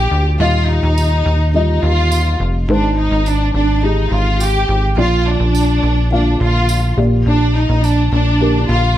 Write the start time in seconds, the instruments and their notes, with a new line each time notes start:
Already playing: felt piano A#3 G4 D5, violin section G4, downlifter
0.12 analog synth bass D2
0.39 analog synth bass D#2, felt piano A#2 G3 F4 D#5, violin section F4
0.69 violin section D#4
0.83 analog synth bass D#2
0.98 tambourine
1.26 analog synth bass D#2
1.54 felt piano G3 F4 D#5, violin section D#4
1.83 analog synth bass D#2, violin section F4
2.12 tambourine
2.40 analog synth bass F1
2.69 analog synth bass G#1, felt piano G#2 D#3 G#3 D#4 C5, violin section D4
2.98 violin section D#4
3.11 analog synth bass G#1
3.26 violin section D4, tambourine
3.54 analog synth bass G#1, violin section D4
3.82 felt piano G#3 D#4 G4, violin section D#4
4.12 analog synth bass G#1, violin section F4
4.40 violin section G4, tambourine
4.69 analog synth bass G#1
4.97 analog synth bass A#1, felt piano A#2 F3 A#3 F4 D5, violin section F4
5.26 violin section D4
5.40 analog synth bass A#1
5.55 tambourine
5.83 analog synth bass A#1
6.11 felt piano A#3 F4 F5, violin section D4
6.40 analog synth bass A#1, violin section F4
6.69 tambourine
6.97 analog synth bass A#1, felt piano A#2 A#3 G4 D5
7.26 analog synth bass A#1, violin section D4
7.57 violin section D#4
7.69 analog synth bass A#1
7.84 violin section D4, tambourine
8.12 analog synth bass A#1, violin section D4
8.40 felt piano A#3 G4 A#4
8.69 analog synth bass A#1, violin section F4